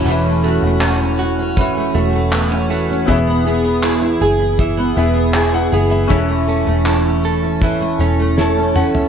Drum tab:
TB |--x---x---x---x-|--x---x---x---x-|--x---x---x-----|
CP |----x-------x---|----x-------x---|----x-----------|
SD |----------------|----------------|------------o---|
T2 |----------------|----------------|--------------o-|
FT |----------------|----------------|---------------o|
BD |--------o-------|o-------o-------|o-------o-------|